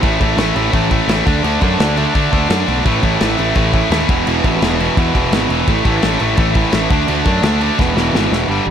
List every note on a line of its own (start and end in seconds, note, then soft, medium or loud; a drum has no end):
0.02 0.16 A1 medium
0.02 0.18 A2 loud
0.02 0.19 E3 loud
0.02 0.20 A3 loud
0.02 kick loud
0.02 crash medium
0.19 0.34 A1 loud
0.19 0.36 A2 medium
0.19 0.36 E3 loud
0.19 0.37 A3 loud
0.19 kick loud
0.19 crash medium
0.37 0.51 A1 loud
0.37 0.54 A2 medium
0.37 0.55 E3 medium
0.37 0.56 A3 medium
0.37 snare loud
0.37 crash medium
0.55 0.69 A1 medium
0.55 0.71 A2 loud
0.55 0.71 E3 medium
0.55 0.73 A3 loud
0.55 crash medium
0.72 0.99 A1 medium
0.72 0.89 A2 loud
0.72 0.89 E3 loud
0.72 0.91 A3 loud
0.72 kick loud
0.72 crash medium
0.90 1.08 A2 medium
0.90 1.08 E3 medium
0.90 1.09 A3 medium
0.90 kick medium
0.90 crash medium
1.08 1.21 A1 medium
1.08 1.25 A2 medium
1.08 1.26 E3 loud
1.08 1.26 A3 loud
1.08 snare loud
1.08 crash loud
1.26 1.40 D2 medium
1.26 1.42 D3 loud
1.26 1.43 A3 loud
1.26 1.43 D4 loud
1.26 kick loud
1.26 crash medium
1.44 1.57 D2 medium
1.44 1.60 D3 medium
1.44 1.61 A3 loud
1.44 1.62 D4 loud
1.44 crash medium
1.61 1.75 F#2 loud
1.61 1.77 D3 medium
1.61 1.79 A3 loud
1.61 1.78 D4 loud
1.61 kick medium
1.61 crash medium
1.79 2.06 D2 loud
1.79 1.95 D3 loud
1.79 1.95 A3 medium
1.79 1.96 D4 loud
1.79 snare loud
1.79 crash medium
1.96 2.13 D3 medium
1.96 2.13 A3 loud
1.96 2.14 D4 loud
1.96 crash medium
2.14 2.31 D3 medium
2.14 2.28 D3 medium
2.14 2.31 A3 loud
2.14 2.31 D4 loud
2.14 kick loud
2.14 crash medium
2.32 2.46 D2 loud
2.32 2.48 D3 medium
2.32 2.48 A3 loud
2.32 2.49 D4 medium
2.32 kick medium
2.32 crash medium
2.49 2.63 F#2 medium
2.49 2.66 D3 loud
2.49 2.66 A3 medium
2.49 2.67 D4 loud
2.49 snare loud
2.49 crash medium
2.67 2.81 B1 medium
2.67 2.84 D3 loud
2.67 2.84 A3 medium
2.67 2.85 D4 medium
2.67 crash medium
2.85 2.98 A1 medium
2.85 3.01 A2 medium
2.85 3.02 E3 loud
2.85 3.02 A3 loud
2.85 kick loud
2.85 crash medium
3.02 3.16 A1 medium
3.02 3.19 A2 loud
3.02 3.21 E3 loud
3.02 3.20 A3 medium
3.02 kick medium
3.02 crash medium
3.20 3.34 A1 loud
3.20 3.37 A2 medium
3.20 3.38 E3 loud
3.20 3.37 A3 loud
3.20 snare loud
3.20 crash medium
3.38 3.52 A1 medium
3.38 3.55 A2 medium
3.38 3.56 E3 medium
3.38 3.55 A3 medium
3.38 crash medium
3.55 3.82 A1 medium
3.55 3.72 A2 loud
3.55 3.72 E3 loud
3.55 3.72 A3 loud
3.55 kick loud
3.55 crash medium
3.73 3.89 A2 medium
3.73 3.91 E3 medium
3.73 3.90 A3 medium
3.73 kick medium
3.73 crash medium
3.90 4.04 D#2 loud
3.90 4.07 A2 medium
3.90 4.10 E3 loud
3.90 4.08 A3 loud
3.90 snare loud
3.90 crash medium
4.09 4.22 E1 medium
4.09 4.26 E2 loud
4.09 4.26 B2 loud
4.09 4.27 E3 loud
4.09 kick loud
4.09 crash medium
4.27 4.40 E1 medium
4.27 4.43 E2 loud
4.27 4.43 B2 loud
4.27 4.45 E3 loud
4.27 crash loud
4.44 4.57 A1 medium
4.44 4.61 E2 medium
4.44 4.61 B2 medium
4.44 4.62 E3 loud
4.44 kick loud
4.44 crash medium
4.62 4.88 E1 loud
4.62 4.78 E2 loud
4.62 4.78 B2 loud
4.62 4.79 E3 loud
4.62 snare loud
4.62 crash loud
4.79 4.96 E2 loud
4.79 4.96 B2 loud
4.79 4.96 E3 medium
4.79 crash medium
4.97 5.13 E2 loud
4.97 5.10 E2 loud
4.97 5.13 B2 loud
4.97 5.14 E3 loud
4.97 kick loud
4.97 crash medium
5.15 5.28 E1 loud
5.15 5.31 E2 medium
5.15 5.31 B2 loud
5.15 5.32 E3 medium
5.15 kick medium
5.15 crash medium
5.32 5.45 G#1 medium
5.32 5.50 E2 medium
5.32 5.50 B2 loud
5.32 5.50 E3 loud
5.32 snare loud
5.32 crash medium
5.49 5.62 E1 loud
5.49 5.67 E2 loud
5.49 5.67 B2 loud
5.49 5.67 E3 loud
5.49 crash medium
5.68 5.81 A1 loud
5.68 5.84 A2 loud
5.68 5.85 E3 loud
5.68 5.85 A3 loud
5.68 kick loud
5.68 crash medium
5.85 5.98 A1 medium
5.85 6.02 A2 medium
5.85 6.03 E3 loud
5.85 6.03 A3 loud
5.85 kick loud
5.85 crash medium
6.02 6.16 A1 loud
6.02 6.20 A2 medium
6.02 6.21 E3 loud
6.02 6.21 A3 loud
6.02 snare loud
6.02 crash medium
6.20 6.34 A1 medium
6.20 6.37 A2 medium
6.20 6.38 E3 loud
6.20 6.38 A3 loud
6.20 crash medium
6.37 6.64 A1 medium
6.37 6.55 A2 loud
6.37 6.56 E3 loud
6.37 6.56 A3 loud
6.37 kick loud
6.37 crash medium
6.55 6.73 A2 medium
6.55 6.73 E3 medium
6.55 6.73 A3 medium
6.55 kick medium
6.55 crash medium
6.72 6.86 A1 medium
6.72 6.90 A2 medium
6.72 6.90 E3 loud
6.72 6.90 A3 loud
6.72 snare loud
6.72 crash medium
6.90 7.04 D2 medium
6.90 7.07 D3 loud
6.90 7.08 A3 loud
6.90 7.08 D4 loud
6.90 kick loud
6.90 crash medium
7.08 7.21 D2 medium
7.08 7.25 D3 loud
7.08 7.25 A3 loud
7.08 7.26 D4 loud
7.08 crash medium
7.25 7.39 F#2 loud
7.25 7.43 D3 medium
7.25 7.43 A3 medium
7.25 7.44 D4 medium
7.25 kick medium
7.25 crash medium
7.43 7.69 D2 loud
7.43 7.61 D3 loud
7.43 7.61 A3 loud
7.43 7.62 D4 loud
7.43 snare loud
7.43 crash medium
7.61 7.78 D3 medium
7.61 7.79 A3 medium
7.61 7.79 D4 medium
7.61 crash medium
7.79 7.92 E1 medium
7.79 7.96 E2 loud
7.79 7.96 B2 loud
7.79 7.97 E3 loud
7.79 kick loud
7.79 snare medium
7.96 8.09 E1 medium
7.96 8.14 E2 medium
7.96 8.14 B2 medium
7.96 8.15 E3 medium
7.96 snare medium
8.13 8.27 G#1 medium
8.13 8.31 E2 medium
8.13 8.31 B2 loud
8.13 8.32 E3 loud
8.13 snare loud
8.30 8.44 E1 medium
8.30 8.49 E2 loud
8.30 8.49 B2 medium
8.30 8.49 E3 loud
8.30 snare medium
8.48 8.59 G1 medium
8.48 8.64 G2 medium
8.48 8.64 D3 medium
8.48 8.65 G3 loud
8.66 8.71 G1 medium